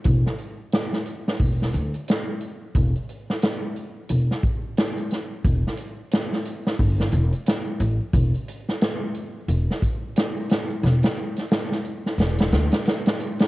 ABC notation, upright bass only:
X:1
M:4/4
L:1/8
Q:"Swing 16ths" 1/4=89
K:Em
V:1 name="Upright bass" clef=bass
E,,, z3 E,,, D,, z2 | E,,, z3 E,,, z3 | E,,, z3 G,,, E,,, z A,,, | E,,, z3 E,,, z3 |
E,,, z3 E,,, D,, z2 |]